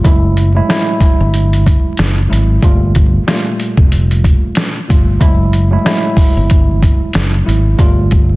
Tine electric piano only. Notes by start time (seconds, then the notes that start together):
0.03 A2 F#3 G#3 E4
0.54 A2 F#3 G#3 E4
0.68 A2 F#3 G#3 E4
2.28 A2 F#3 G#3 E4
2.62 A#2 G3 A3 F4
3.27 A#2 G3 A3 F4
4.88 A#2 G3 A3 F4
5.20 A2 F#3 G#3 E4
5.70 A2 F#3 G#3 E4
5.84 A2 F#3 G#3 E4
7.44 A2 F#3 G#3 E4
7.78 A#2 G3 A3 F4